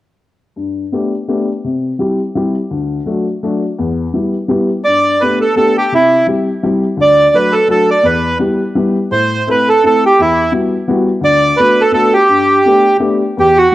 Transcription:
0.56 0.83 G2 medium
0.92 1.11 A3 soft
0.92 1.11 B3 soft
0.92 1.11 D4 soft
0.92 1.11 G4 soft
1.28 1.47 A3 medium
1.28 1.47 B3 soft
1.28 1.47 D4 soft
1.28 1.47 G4 medium
1.64 1.91 C3 medium
1.99 2.18 G3 soft
1.99 2.19 C4 soft
1.99 2.18 E4 soft
1.99 2.18 G4 medium
2.35 2.54 G3 medium
2.35 2.54 C4 soft
2.35 2.54 E4 soft
2.35 2.55 G4 medium
2.71 2.98 D2 medium
3.05 3.25 F#3 soft
3.05 3.25 A3 soft
3.05 3.25 D4 soft
3.05 3.25 F#4 medium
3.43 3.61 F#3 medium
3.43 3.61 A3 medium
3.43 3.62 D4 medium
3.43 3.62 F#4 medium
3.78 4.05 E2 medium
4.13 4.33 G3 soft
4.13 4.32 B3 soft
4.13 4.33 E4 soft
4.13 4.33 G4 soft
4.48 4.68 G3 medium
4.48 4.68 B3 medium
4.48 4.68 E4 medium
4.48 4.68 G4 medium
4.84 5.13 G2 soft
4.84 5.22 D5 medium
5.21 5.41 A3 soft
5.21 5.41 B3 soft
5.21 5.41 D4 soft
5.21 5.41 G4 soft
5.21 5.39 B4 medium
5.41 5.55 A4 medium
5.56 5.76 A3 soft
5.56 5.76 B3 soft
5.56 5.76 D4 soft
5.56 5.77 G4 medium
5.56 5.77 A4 medium
5.78 5.94 G4 medium
5.92 6.20 C3 medium
5.92 6.27 E4 medium
6.27 6.47 G3 soft
6.27 6.47 C4 soft
6.27 6.47 E4 soft
6.27 6.47 G4 medium
6.63 6.83 G3 medium
6.63 6.83 C4 medium
6.63 6.83 E4 medium
6.63 6.83 G4 medium
6.97 7.25 D2 medium
7.01 7.37 D5 medium
7.33 7.53 F#3 medium
7.33 7.53 A3 soft
7.33 7.53 D4 soft
7.33 7.54 F#4 medium
7.33 7.55 B4 medium
7.52 7.68 A4 medium
7.68 7.88 F#3 medium
7.68 7.89 A3 soft
7.68 7.89 D4 medium
7.68 7.89 F#4 medium
7.68 7.90 A4 medium
7.90 8.07 D5 medium
8.03 8.31 E2 medium
8.03 8.38 B4 medium
8.39 8.59 G3 soft
8.39 8.59 B3 soft
8.39 8.60 E4 soft
8.39 8.60 G4 medium
8.75 8.95 G3 medium
8.75 8.95 B3 medium
8.75 8.95 E4 medium
8.75 8.96 G4 medium
9.11 9.39 A2 medium
9.11 9.49 C5 medium
9.47 9.67 A3 soft
9.47 9.67 C4 soft
9.47 9.67 E4 soft
9.47 9.67 A4 medium
9.47 9.69 B4 medium
9.69 9.85 A4 medium
9.83 10.03 A3 medium
9.83 10.02 C4 medium
9.83 10.03 E4 soft
9.83 10.03 A4 medium
9.83 10.04 A4 medium
10.06 10.21 G4 medium
10.19 10.46 E2 soft
10.19 10.53 E4 medium
10.51 10.72 G3 soft
10.51 10.72 B3 soft
10.51 10.72 E4 soft
10.51 10.72 F#4 medium
10.88 11.08 G3 medium
10.88 11.07 B3 medium
10.88 11.08 E4 medium
10.88 11.08 F#4 medium
11.21 11.49 D2 medium
11.21 11.61 D5 medium
11.57 11.78 A3 medium
11.57 11.79 B3 soft
11.57 11.78 D4 soft
11.57 11.79 F#4 medium
11.57 11.82 B4 medium
11.81 11.92 A4 medium
11.92 12.12 A3 medium
11.92 12.12 B3 soft
11.92 12.12 D4 medium
11.92 12.12 F#4 medium
11.92 12.14 A4 medium
12.13 12.97 G4 medium
12.28 12.56 G2 medium
12.66 12.85 A3 medium
12.66 12.85 B3 soft
12.66 12.85 D4 medium
12.66 12.85 G4 medium
12.99 13.20 A3 medium
12.99 13.20 B3 medium
12.99 13.20 D4 medium
12.99 13.20 G4 medium
13.37 13.64 E2 medium
13.37 13.58 G4 medium
13.57 13.74 F#4 medium

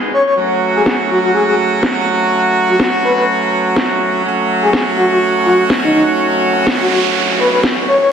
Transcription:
0.00 0.21 G#3 medium
0.00 0.21 B3 medium
0.00 0.21 D#4 medium
0.00 0.21 G#4 medium
0.13 0.22 C#5 medium
0.27 0.34 C#5 medium
0.38 4.22 F#3 medium
0.38 4.22 A3 medium
0.38 4.22 C#4 medium
0.38 4.22 F#4 medium
0.76 0.82 G#4 medium
0.86 0.95 G#4 medium
0.86 snare loud
1.10 1.19 F#4 medium
1.24 1.31 F#4 medium
1.34 1.43 G#4 medium
1.48 1.55 G#4 medium
1.83 snare loud
2.69 2.76 F#4 medium
2.80 2.88 F#4 medium
2.80 snare loud
3.04 3.13 B4 medium
3.17 3.24 B4 medium
3.76 snare loud
4.25 8.09 F#3 medium
4.25 8.09 A3 medium
4.25 8.09 C#4 medium
4.25 8.09 F#4 medium
4.63 4.69 G#4 medium
4.73 4.82 G#4 medium
4.73 snare loud
4.97 5.06 F#4 medium
5.11 5.18 F#4 medium
5.46 5.63 F#4 medium
5.70 snare loud
5.84 5.90 D#4 medium
5.94 6.03 D#4 medium
6.18 noise sweep medium
6.67 snare loud
6.80 6.87 F#4 medium
6.91 7.00 F#4 medium
7.39 7.48 B4 medium
7.53 7.60 B4 medium
7.63 snare loud
7.88 7.96 C#5 medium
8.01 8.08 C#5 medium

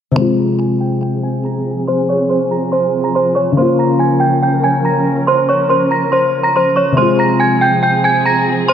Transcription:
0.11 3.50 C3 medium
0.16 6.93 F3 medium
0.16 3.53 G#3 medium
0.16 3.54 C4 medium
0.16 3.54 G#4 medium
0.16 0.37 C5 medium
0.16 0.36 C6 medium
0.21 3.55 F4 medium
0.38 0.58 A#5 medium
0.38 0.58 A#6 medium
0.59 0.79 G#5 medium
0.59 0.79 G#6 medium
0.80 1.00 G5 medium
0.80 1.01 G6 medium
1.02 1.22 G5 medium
1.02 1.22 G6 medium
1.23 1.43 G#5 medium
1.23 1.44 G#6 medium
1.45 1.64 A#5 medium
1.45 1.65 A#6 medium
1.88 2.08 C5 medium
1.88 2.07 C6 loud
2.09 2.29 C#5 medium
2.09 2.29 C#6 medium
2.29 2.50 C5 medium
2.29 2.49 C6 medium
2.51 2.71 A#5 medium
2.51 2.71 A#6 medium
2.72 3.02 C5 medium
2.72 3.02 C6 medium
3.04 3.14 A#5 medium
3.04 3.14 A#6 medium
3.15 3.35 C5 medium
3.15 3.35 C6 medium
3.35 3.56 C#5 medium
3.35 3.55 C#6 medium
3.52 6.91 C#3 medium
3.57 6.93 A#3 medium
3.57 6.94 C#4 medium
3.57 6.94 A#4 medium
3.57 3.78 C5 medium
3.57 3.77 C6 loud
3.62 6.96 F4 medium
3.79 3.99 A#5 medium
3.79 3.99 A#6 medium
3.99 4.19 G#5 medium
3.99 4.20 G#6 medium
4.20 4.40 G5 medium
4.20 4.41 G6 medium
4.43 4.62 G5 medium
4.43 4.63 G6 medium
4.64 4.83 G#5 medium
4.64 4.84 G#6 medium
4.85 5.05 A#5 medium
4.85 5.05 A#6 medium
5.27 5.48 C5 medium
5.27 5.47 C6 loud
5.49 5.69 C#5 medium
5.49 5.69 C#6 medium
5.69 5.90 C5 medium
5.69 5.90 C6 medium
5.91 6.11 A#5 medium
5.91 6.11 A#6 medium
6.12 6.43 C5 medium
6.12 6.42 C6 medium
6.43 6.54 A#5 medium
6.43 6.54 A#6 medium
6.56 6.76 C5 medium
6.56 6.75 C6 medium
6.76 6.96 C#5 medium
6.76 6.96 C#6 medium
6.92 8.73 C3 medium
6.97 8.73 F3 medium
6.97 8.73 G#3 medium
6.97 8.73 C4 medium
6.97 8.73 G#4 medium
6.97 7.18 C5 medium
6.97 7.17 C6 loud
7.02 8.73 F4 medium
7.19 7.39 A#5 medium
7.19 7.39 A#6 medium
7.40 7.60 G#5 medium
7.40 7.60 G#6 medium
7.61 7.81 G5 medium
7.61 7.82 G6 medium
7.83 8.03 G5 medium
7.83 8.03 G6 medium
8.04 8.24 G#5 medium
8.04 8.24 G#6 medium
8.26 8.45 A#5 medium
8.26 8.46 A#6 medium
8.68 8.73 C5 medium
8.68 8.73 C6 loud

